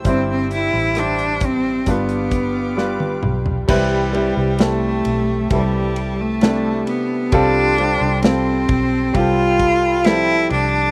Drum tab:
CC |----------------|x---------------|----------------|
RD |----------------|--x-x-x-x-x-x-x-|x-x-x-x-x-x-x-x-|
HH |x-x-xxx-xxx-----|----------------|----------------|
SD |----r-------o---|----o-------o---|----o-------o---|
T1 |-------------o--|----------------|----------------|
T2 |--------------o-|----------------|----------------|
FT |---------------o|----------------|----------------|
BD |o-----o-o-o-----|o-------o-------|o-----o-o-o-----|